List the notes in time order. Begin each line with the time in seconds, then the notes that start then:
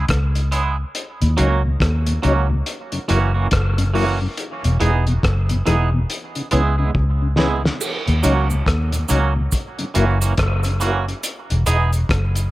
0.09 C#2, kick, cross-stick, closed hi-hat
0.35 closed hi-hat
0.51 E3 G#3 B3 C#4 E4 G#4, closed hi-hat
0.78 C#3
0.95 closed hi-hat
1.21 D#2 A#2, closed hi-hat
1.37 C#2 F#3 A#3 C#4 D#4 F#4, closed hi-hat
1.64 D#2 A#2
1.80 D#2, kick, cross-stick, closed hi-hat
2.06 D#2 A#2, closed hi-hat
2.22 C#2 F#3 A#3 C#4 D#4 F#4, closed hi-hat
2.50 D#2 A#2, muted clean electric guitar stroke
2.66 closed hi-hat
2.92 F#2 C#3, closed hi-hat
3.08 F#1 E3 F#3 A#3 C#4 E4 F#4, closed hi-hat
3.34 E3 A#3 C#4 F#4
3.51 F#1, kick, cross-stick, closed hi-hat
3.78 F#2 C#3, closed hi-hat
3.94 E3 F#3 A#3 C#4 E4 F#4, open hi-hat
4.22 F#2 C#3
4.37 closed hi-hat
4.64 E1 E2 B2, closed hi-hat
4.80 E1 E3 G#3 B3 D#4 G#4, closed hi-hat
5.07 E2 B2, closed hi-hat
5.23 F#1, kick, cross-stick, closed hi-hat
5.49 E2 B2, closed hi-hat
5.66 E1 E3 G#3 B3 D#4 G#4, cross-stick, closed hi-hat
5.94 E2 B2
6.10 closed hi-hat
6.35 C#3, closed hi-hat
6.51 C#2 E3 G#3 B3 C#4 E4 G#4, closed hi-hat
6.78 C#3 G#3 B3 E4 G#4
6.95 C#2, kick
7.22 C#3
7.37 E3 G#3 B3 C#4 E4 G#4, snare
7.64 C#3, snare
7.81 crash, cabasa
8.07 D#2 A#2, closed hi-hat
8.23 C#2 F#3 A#3 C#4 D#4 F#4, closed hi-hat, cabasa
8.50 D#2 A#2, cabasa
8.66 D#2, kick, cross-stick, closed hi-hat
8.92 D#2 A#2, closed hi-hat, cabasa
9.08 C#2 F#3 A#3 C#4 D#4 F#4, closed hi-hat, cabasa
9.35 D#2 A#2
9.52 kick, closed hi-hat, cabasa
9.79 F#2 C#3, closed hi-hat
9.94 F#1 E3 F#3 A#3 C#4 E4 F#4, closed hi-hat, cabasa
10.21 E3 A#3 C#4 F#4, closed hi-hat, cabasa
10.38 F#1, kick, cross-stick, closed hi-hat
10.63 F#2 C#3, closed hi-hat, cabasa
10.80 E3 F#3 A#3 C#4 E4 F#4, closed hi-hat, cabasa
11.08 F#2 C#3, closed hi-hat
11.23 closed hi-hat, cabasa
11.50 E1 E2 B2, closed hi-hat
11.66 E1 E3 G#3 B3 D#4 G#4, closed hi-hat, cabasa
11.93 E2 B2, closed hi-hat, cabasa
12.09 F#1, kick, cross-stick, closed hi-hat
12.35 E2 B2, closed hi-hat, cabasa